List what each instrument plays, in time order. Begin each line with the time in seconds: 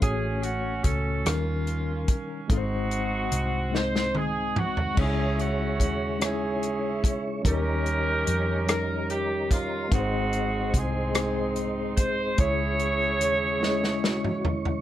0.01 fingered electric bass A1, tine electric piano A2 A3 C#4 F#4 C#5, saxophone section C#4 G#4, kick, closed hi-hat
0.42 saxophone section F#4, closed hi-hat
0.83 fingered electric bass C#2, saxophone section A4, kick, closed hi-hat
1.23 fingered electric bass D#2, tine electric piano D#3 F#3 C#4 D#4 A#4, saxophone section A#3 C#4 F4, cross-stick, closed hi-hat
1.30 tine electric piano G3
1.67 closed hi-hat
2.08 kick, closed hi-hat
2.48 fingered electric bass G#1, tine electric piano G#2 G#3 C4 D#4 A4, saxophone section D#4 F#4, kick, closed hi-hat
2.52 saxophone section C4
2.57 tine electric piano C5
2.91 closed hi-hat
3.32 fingered electric bass C2, closed hi-hat
3.71 tine electric piano G#3 C4 D#4 D#5, snare
3.76 saxophone section C5
3.96 snare
4.15 saxophone section G#4, high tom
4.56 saxophone section F#4, mid tom
4.77 floor tom
4.95 fingered electric bass C#2, tine electric piano C#3 G#3 C#4 D#4 C#5, tonewheel organ G#4 C#5 E5 C#6, saxophone section G#4, kick, crash
4.99 saxophone section C#4 E4
5.03 tine electric piano E4
5.39 saxophone section F#4, closed hi-hat
5.80 fingered electric bass D#2, saxophone section F#4, kick, closed hi-hat
6.18 tine electric piano G#3 C#4 D#4 C#5, cross-stick, closed hi-hat
6.22 saxophone section C#4 E4 G#4
6.27 tine electric piano E4
6.63 closed hi-hat
7.04 kick, closed hi-hat
7.42 fingered electric bass D#2, tine electric piano D#3 G3 C#4 D#4 A#4, tonewheel organ G4 D#5 A#5, saxophone section A#4, kick, closed hi-hat
7.47 saxophone section C#4 G4
7.86 closed hi-hat
8.27 fingered electric bass F2, closed hi-hat
8.66 tine electric piano G3 C#4 D#4 A#4, saxophone section A#4, cross-stick, closed hi-hat
9.10 saxophone section G4, closed hi-hat
9.51 saxophone section F4, kick, closed hi-hat
9.89 fingered electric bass G#1, tine electric piano G#2 G#3 C4 D#4 B4, saxophone section D#4 F#4, tonewheel organ G#4 C5 C6, kick, closed hi-hat
9.93 saxophone section C4
9.99 tine electric piano C5
10.33 closed hi-hat
10.74 fingered electric bass C2, saxophone section C4 D#4 G#4, kick, closed hi-hat
11.13 tine electric piano G#3 C4 D#4 C5, cross-stick, closed hi-hat
11.56 closed hi-hat
11.97 saxophone section C5, kick, closed hi-hat
12.37 fingered electric bass C#2, tine electric piano C#3 G#3 C#4 E4 C#5, saxophone section E4 G#4 C#5, tonewheel organ C#5 C#6, kick, closed hi-hat
12.79 closed hi-hat
13.21 fingered electric bass D#2, closed hi-hat
13.61 tine electric piano G#3 C#4 E4 D#5, tonewheel organ G#4, snare
13.84 snare
14.03 tonewheel organ F#4, snare
14.24 mid tom
14.45 tonewheel organ E4, floor tom
14.65 floor tom